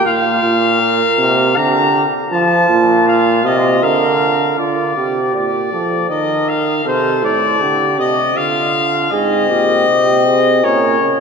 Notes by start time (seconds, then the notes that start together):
0.05 A#2 F4 F5
0.43 A#2
0.80 A#4
1.19 C3
1.56 D3 G4 A#5
2.31 F3 F4 A5
2.70 A#2
3.07 F5
3.45 C3 D#5
3.82 D3 A#4 F5
4.58 D3 F4 D5
4.97 C3 G4
5.35 A#2 D5
5.72 F3 A4
6.10 D#3 A#4 D#5
6.48 F5
6.85 C3 A4 C5
7.23 A2 D5
7.61 D3 G4
7.99 C3 D#5
8.36 D3 F4 F5
9.11 G#2 C4 G#4 D#5
9.49 A#2 G4
9.87 C3
10.25 G#4
10.62 A#2 C#4 A#4 C#5
11.02 C#3